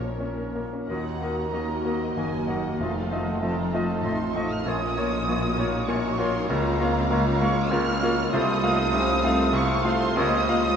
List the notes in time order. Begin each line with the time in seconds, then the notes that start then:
Already playing: A#1 A#2 A#3 C#4 D#4 A#4 C#5 A#5
0.02 F3
0.21 C#4
0.37 A#4
0.55 A#3
0.73 C#4
0.88 D#2 D#3 A#3 D#4 F#4 A#4 D#5 F#5 A#5
1.21 A#3 F#4 A#4 D#5
1.53 D#2 D#3 A#3 C#4 F#4 D#5
1.85 A#3 C4 F#4 A#4 D#5
2.16 F#1 D#2 F#2 D#3 A#3 D#4 F#4 D#5 G#5
2.47 A#3 F#4 A#4 D#5 F#5
2.78 F1 F2 A3 D#4 F4 A4 C5 D#5 F5
3.11 A3 F4 D#5
3.26 F#5
3.41 F1 F2 A3 C4 F4 A4 C5 D#5 A5
3.57 A#5
3.73 A3 F4 D#5 A5
4.03 F1 A1 F2 A2 A3 C4 D#4 F4 D#5 C6
4.35 A3 F4 D#5 C#6
4.51 F6
4.66 A#1 A#2 A#3 C#4 F4 A#4 C#5 D#6
4.97 A#3 D#4 F4 C#5
5.27 A#1 A#2 A#3 F4 F#4 A#4 C#5
5.58 A#3 F4 C#5
5.88 A#1 A#2 A#3 F4 A#4 C#5 C#6
6.19 A#3 F4 C#5 C6
6.47 C#2 C#3 A#3 C#4 F4 C#5 F5 A#5
6.79 A#3 C4 F4 C#5 F5
7.09 C#2 C#3 A#3 F4 C#5
7.40 G#3 A#3 F4 C#5 F5 C#6
7.70 C#2 C#3 A#3 F4 G#4 A#4 C#5 F6
8.02 A#3 F4 F#4 C#5 F5
8.31 C2 C3 A3 C4 F4 A4 C5 D#5 D#6
8.63 A3 D#4 F4 F5
8.91 C2 C3 A3 C#4 D#4 C5 F5
9.24 A3 C4 F4 F5
9.53 C2 C3 A3 F4 C5 F5 C#6
9.84 A3 F4 F5 C6
10.16 C#2 C#3 A#3 F4 C#5 D#5 D#6
10.49 A#3 F4 F5